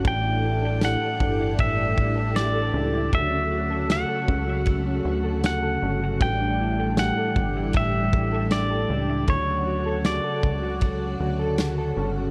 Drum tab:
RD |x-x-x-x-|x-x-x-x-|x-x-x-x-|x-x-x-x-|
TB |--x---x-|--x---x-|--x---x-|--x---x-|
SD |--o---o-|--o---o-|--o---o-|--o---o-|
BD |o--ooo--|o--oo---|o--ooo--|o--oo---|